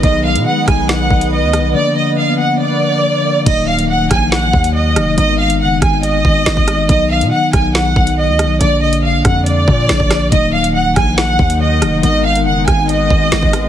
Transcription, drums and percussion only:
0.03 kick loud
0.03 closed hi-hat medium
0.36 closed hi-hat medium
0.68 kick loud
0.68 cross-stick loud
0.68 closed hi-hat medium
0.89 snare loud
0.89 closed hi-hat medium
1.10 kick medium
1.21 closed hi-hat medium
1.53 cross-stick medium
1.53 closed hi-hat loud
3.46 kick loud
3.46 closed hi-hat medium
3.46 crash loud
3.79 closed hi-hat medium
4.11 kick loud
4.11 cross-stick loud
4.11 closed hi-hat medium
4.32 snare loud
4.32 closed hi-hat medium
4.53 kick loud
4.64 closed hi-hat medium
4.96 cross-stick loud
4.96 closed hi-hat loud
5.18 closed hi-hat medium
5.50 closed hi-hat medium
5.82 kick loud
5.82 cross-stick loud
5.82 closed hi-hat medium
6.03 closed hi-hat medium
6.25 kick loud
6.46 snare loud
6.46 closed hi-hat medium
6.57 kick medium
6.68 cross-stick medium
6.68 closed hi-hat medium
6.89 kick loud
6.89 closed hi-hat medium
7.21 closed hi-hat medium
7.53 kick loud
7.53 cross-stick loud
7.53 closed hi-hat medium
7.75 snare loud
7.75 closed hi-hat medium
7.96 kick loud
8.07 closed hi-hat medium
8.39 cross-stick medium
8.39 closed hi-hat loud
8.61 closed hi-hat loud
8.93 closed hi-hat medium
9.25 kick loud
9.25 cross-stick loud
9.25 closed hi-hat medium
9.46 closed hi-hat medium
9.68 kick loud
9.89 snare loud
9.89 closed hi-hat medium
10.00 kick medium
10.11 cross-stick medium
10.11 snare medium
10.11 closed hi-hat medium
10.32 kick loud
10.32 closed hi-hat medium
10.64 closed hi-hat medium
10.96 kick loud
10.96 cross-stick loud
10.96 closed hi-hat medium
11.18 snare loud
11.18 closed hi-hat medium
11.39 kick loud
11.50 closed hi-hat medium
11.82 cross-stick medium
11.82 closed hi-hat loud
12.03 closed hi-hat medium
12.36 closed hi-hat medium
12.68 kick loud
12.68 cross-stick loud
12.68 closed hi-hat medium
12.89 closed hi-hat medium
13.10 kick loud
13.32 snare loud
13.32 closed hi-hat medium
13.43 kick medium
13.53 cross-stick medium
13.53 closed hi-hat medium

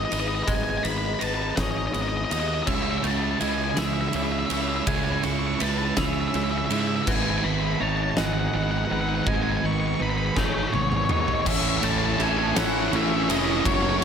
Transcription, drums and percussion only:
0.12 ride medium
0.48 kick loud
0.48 ride medium
0.85 ride medium
1.21 ride medium
1.57 kick medium
1.57 snare loud
1.57 ride medium
1.94 ride medium
2.31 ride medium
2.67 kick loud
2.67 crash medium
3.04 ride medium
3.41 ride medium
3.77 snare loud
3.77 ride medium
4.13 ride medium
4.50 ride medium
4.87 kick loud
4.87 ride loud
5.23 ride medium
5.60 ride medium
5.97 kick medium
5.97 snare loud
5.97 ride medium
6.34 ride medium
6.70 ride medium
7.07 kick loud
7.07 crash medium
8.17 snare loud
9.27 kick loud
10.37 kick medium
10.37 snare medium
10.74 high tom medium
10.92 mid tom medium
11.09 mid tom loud
11.28 floor tom medium
11.46 kick loud
11.46 crash loud
11.83 ride medium
12.20 ride medium
12.56 snare loud
12.56 ride loud
12.93 ride medium
13.30 ride medium
13.65 kick loud
13.65 ride loud

